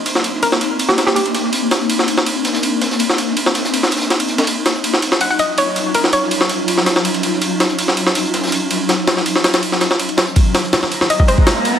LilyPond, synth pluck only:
\new Staff \with { instrumentName = "Synth pluck" } { \time 4/4 \key ees \lydian \tempo 4 = 163 r4 bes'8 r8. g'8 g'16 g'16 r8. | r1 | r1 | r2 ges''16 ges''16 ees''8 des''8 r8 |
bes'8 des''4 r2 r8 | r1 | r1 | r2 ees''16 ees''16 c''8 r4 | }